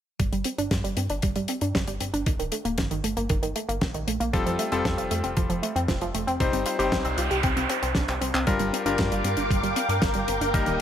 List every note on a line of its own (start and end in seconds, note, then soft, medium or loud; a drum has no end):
0.19 0.31 G1 loud
0.19 0.25 G3 medium
0.19 kick loud
0.19 closed hi-hat medium
0.32 0.44 G1 medium
0.32 0.45 G3 medium
0.32 closed hi-hat soft
0.44 0.58 C4 medium
0.44 closed hi-hat medium
0.58 0.70 G1 medium
0.58 0.67 D4 loud
0.58 closed hi-hat soft
0.71 0.83 G2 loud
0.71 0.77 G3 medium
0.71 kick loud
0.71 snare loud
0.71 closed hi-hat medium
0.84 0.96 G1 medium
0.84 0.96 G3 loud
0.84 closed hi-hat medium
0.97 1.08 G2 medium
0.97 1.09 C4 medium
0.97 closed hi-hat medium
1.10 1.21 G1 medium
1.10 1.19 D4 medium
1.10 closed hi-hat medium
1.22 1.35 G1 loud
1.22 1.28 G3 medium
1.22 kick loud
1.22 closed hi-hat medium
1.36 1.47 G1 medium
1.36 1.48 G3 loud
1.36 closed hi-hat soft
1.48 1.61 C4 medium
1.48 closed hi-hat medium
1.61 1.73 G2 medium
1.61 1.70 D4 medium
1.61 closed hi-hat medium
1.75 1.86 G1 loud
1.75 1.80 G3 medium
1.75 kick loud
1.75 snare loud
1.75 closed hi-hat medium
1.87 1.99 G1 medium
1.87 2.00 G3 medium
1.87 closed hi-hat medium
2.00 2.12 G1 medium
2.00 2.13 C4 medium
2.00 closed hi-hat medium
2.13 2.25 G1 medium
2.13 2.22 D4 medium
2.13 closed hi-hat medium
2.26 2.38 G1 loud
2.26 2.32 D#3 medium
2.26 kick loud
2.26 closed hi-hat medium
2.39 2.51 D1 medium
2.39 2.52 D#3 medium
2.39 closed hi-hat soft
2.52 2.65 A3 medium
2.52 closed hi-hat medium
2.65 2.77 D1 medium
2.65 2.74 A#3 loud
2.65 closed hi-hat medium
2.78 2.90 G1 loud
2.78 2.83 D#3 medium
2.78 kick loud
2.78 snare loud
2.78 closed hi-hat medium
2.91 3.03 G1 medium
2.91 3.03 D#3 loud
2.91 closed hi-hat medium
3.04 3.15 G1 medium
3.04 3.16 A3 medium
3.04 closed hi-hat medium
3.17 3.28 G1 medium
3.17 3.26 A#3 medium
3.17 closed hi-hat medium
3.29 3.41 G1 loud
3.29 3.35 D#3 medium
3.29 kick loud
3.29 closed hi-hat medium
3.43 3.54 G1 medium
3.43 3.55 D#3 loud
3.43 closed hi-hat medium
3.56 3.68 A3 medium
3.56 closed hi-hat medium
3.69 3.80 G1 medium
3.69 3.77 A#3 loud
3.69 closed hi-hat medium
3.81 3.93 A#1 loud
3.81 3.87 D#3 medium
3.81 kick loud
3.81 snare loud
3.81 closed hi-hat medium
3.94 4.06 A#1 medium
3.94 4.07 D#3 medium
3.94 closed hi-hat medium
4.07 4.19 A#1 medium
4.07 4.20 A3 medium
4.07 closed hi-hat loud
4.20 4.32 A#1 medium
4.20 4.29 A#3 loud
4.20 closed hi-hat medium
4.33 4.45 F1 loud
4.33 4.39 F3 medium
4.33 4.69 G3 medium
4.33 4.69 C4 medium
4.33 4.69 F4 medium
4.33 4.69 A4 loud
4.33 kick loud
4.33 closed hi-hat medium
4.46 4.58 F1 medium
4.46 4.59 F3 loud
4.46 closed hi-hat medium
4.59 4.71 A3 medium
4.59 closed hi-hat loud
4.72 4.84 F1 medium
4.72 6.37 G3 medium
4.72 4.81 C4 loud
4.72 6.37 C4 medium
4.72 6.37 F4 medium
4.72 6.37 A4 loud
4.72 closed hi-hat medium
4.85 4.97 F2 loud
4.85 4.90 F3 medium
4.85 kick loud
4.85 snare loud
4.85 closed hi-hat medium
4.98 5.10 F1 medium
4.98 5.10 F3 loud
4.98 closed hi-hat soft
5.11 5.23 F2 medium
5.11 5.23 A3 medium
5.11 closed hi-hat medium
5.24 5.35 F1 medium
5.24 5.33 C4 medium
5.24 closed hi-hat medium
5.37 5.48 F1 loud
5.37 5.42 F3 medium
5.37 kick loud
5.37 closed hi-hat medium
5.50 5.61 F1 medium
5.50 5.62 F3 loud
5.50 closed hi-hat soft
5.63 5.75 A3 medium
5.63 closed hi-hat medium
5.76 5.87 F2 medium
5.76 5.84 C4 medium
5.76 closed hi-hat medium
5.88 6.00 F1 loud
5.88 5.94 F3 medium
5.88 kick loud
5.88 snare loud
5.88 closed hi-hat medium
6.01 6.13 F1 medium
6.01 6.14 F3 loud
6.01 closed hi-hat soft
6.14 6.26 F1 medium
6.14 6.27 A3 medium
6.14 closed hi-hat medium
6.27 6.39 F1 medium
6.27 6.36 C4 loud
6.27 closed hi-hat soft
6.40 6.52 C2 loud
6.40 6.76 G3 medium
6.40 6.45 C4 medium
6.40 6.76 C4 medium
6.40 6.76 D#4 medium
6.40 6.76 C5 loud
6.40 kick loud
6.40 closed hi-hat medium
6.40 noise sweep medium
6.53 6.65 G1 medium
6.53 6.65 C4 medium
6.53 closed hi-hat medium
6.66 6.78 F4 medium
6.66 closed hi-hat medium
6.79 6.91 G1 medium
6.79 8.44 G3 medium
6.79 8.44 C4 medium
6.79 8.44 D#4 medium
6.79 6.88 G4 loud
6.79 8.44 C5 loud
6.79 closed hi-hat medium
6.92 7.04 C2 loud
6.92 6.97 C4 medium
6.92 kick loud
6.92 snare loud
6.92 closed hi-hat medium
7.05 7.16 C2 medium
7.05 7.17 C4 loud
7.05 closed hi-hat soft
7.18 7.29 C2 medium
7.18 7.30 F4 medium
7.18 closed hi-hat medium
7.31 7.42 C2 medium
7.31 7.39 G4 medium
7.31 closed hi-hat soft
7.43 7.55 C2 loud
7.43 7.49 C4 medium
7.43 kick loud
7.43 closed hi-hat medium
7.56 7.68 C2 medium
7.56 7.68 C4 medium
7.56 closed hi-hat medium
7.70 7.78 C4 medium
7.70 closed hi-hat medium
7.82 7.94 C2 medium
7.82 7.95 C4 medium
7.82 closed hi-hat medium
7.95 8.07 C2 loud
7.95 8.04 D4 medium
7.95 kick loud
7.95 snare loud
7.95 closed hi-hat medium
8.08 8.20 C2 medium
8.08 8.17 C4 medium
8.08 clap medium
8.08 closed hi-hat soft
8.21 8.33 C2 loud
8.21 8.30 C4 medium
8.21 closed hi-hat medium
8.34 8.46 C2 medium
8.34 8.43 C4 loud
8.34 clap medium
8.34 closed hi-hat medium
8.47 8.59 G1 loud
8.47 8.83 G3 medium
8.47 8.52 G3 medium
8.47 8.83 D4 medium
8.47 8.83 F4 medium
8.47 8.83 A#4 loud
8.47 10.81 A#4 medium
8.47 10.52 F5 medium
8.47 10.81 G5 medium
8.47 10.52 D6 medium
8.47 kick loud
8.47 closed hi-hat medium
8.59 8.71 G1 medium
8.59 8.72 G3 loud
8.59 closed hi-hat medium
8.73 8.85 C4 medium
8.73 closed hi-hat loud
8.86 8.97 G1 medium
8.86 10.51 G3 medium
8.86 10.51 D4 medium
8.86 8.95 D4 loud
8.86 10.51 F4 medium
8.86 10.51 A#4 loud
8.86 closed hi-hat medium
8.98 9.10 G2 loud
8.98 9.04 G3 medium
8.98 kick loud
8.98 snare loud
8.98 closed hi-hat medium
9.11 9.23 G1 medium
9.11 9.24 G3 loud
9.11 closed hi-hat medium
9.24 9.36 G2 medium
9.24 9.37 C4 medium
9.24 closed hi-hat medium
9.37 9.49 G1 medium
9.37 9.46 D4 loud
9.37 closed hi-hat medium
9.50 9.62 G1 loud
9.50 9.56 G3 medium
9.50 kick loud
9.50 closed hi-hat medium
9.63 9.75 G1 medium
9.63 9.76 G3 loud
9.63 closed hi-hat medium
9.76 9.89 C4 medium
9.76 closed hi-hat medium
9.89 10.01 G2 medium
9.89 9.98 D4 medium
9.89 closed hi-hat medium
10.02 10.14 G1 loud
10.02 10.07 G3 medium
10.02 kick loud
10.02 snare loud
10.02 closed hi-hat medium
10.14 10.27 G1 medium
10.14 10.27 G3 medium
10.14 closed hi-hat medium
10.28 10.40 G1 medium
10.28 10.41 C4 medium
10.28 closed hi-hat medium
10.41 10.52 G1 medium
10.41 10.50 D4 loud
10.41 closed hi-hat medium
10.54 10.66 G1 loud
10.54 10.59 D#3 medium
10.54 10.81 G3 medium
10.54 10.81 A#3 medium
10.54 10.81 D#4 medium
10.54 10.81 A#4 loud
10.54 10.81 D#5 medium
10.54 10.81 D#6 medium
10.54 kick loud
10.54 closed hi-hat medium
10.66 10.78 D1 medium
10.66 10.79 D#3 loud
10.66 closed hi-hat medium